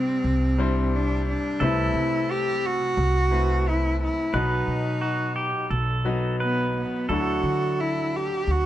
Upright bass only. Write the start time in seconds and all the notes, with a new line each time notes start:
0.24 C2
1.61 C2
1.94 C3
2.97 C2
4.33 B1
4.67 B2
5.71 B1
7.09 D2
7.43 D3
8.47 D2